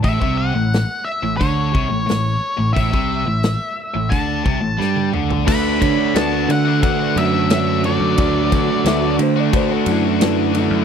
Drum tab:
CC |----------------|----------------|x---------------|----------------|
RD |----------------|----------------|--x-x-x-x-x-x-x-|x-x-x-x-x-x-x-x-|
HH |o---o---o---o---|o---o---o-------|----------------|----------------|
SD |----o-------o---|----o-------o---|----o-------o---|----o-------o---|
T1 |----------------|-------------o--|----------------|----------------|
T2 |----------------|--------------o-|----------------|----------------|
FT |----------------|---------------o|----------------|----------------|
BD |oo------o-o-----|oo------o-o-----|o-o-----o-------|o-o-----o-------|